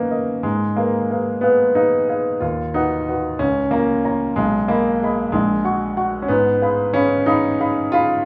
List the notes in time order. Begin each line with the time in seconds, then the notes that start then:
Already playing: F#2 A#3 B3 C#4 D#4 A#4 D#5
0.11 A#4 D#5
0.43 G#2 G#3
0.76 A#3 G#4 B4 F5
1.10 G#4 B4 F5
1.41 B3 G#4 B4 F5
1.75 D#4 G#4 B4 F5
2.09 G#4 B4 F5
2.40 D#2 F4
2.74 D#4 F#4 B4 F#5
3.09 F#4 B4 F#5
3.39 C#2 C#4
3.71 A#3 F4 C#5 A#5
4.04 F4 C#5 A#5
4.36 B1 G#3
4.68 A#3 G#4 D#5 B5
5.03 G#4 D#5 B5
5.32 A#1 G#3
5.64 F#4 F#5 C#6
5.97 F#4 F#5 C#6
6.22 C#4
6.28 G#2 B3
6.62 G#4 F5 B5
6.93 C#4 G#4 F5 B5
7.26 D#4 G#4 F5 B5
7.60 G#4 F5 B5
7.92 F4 G#4 F5 B5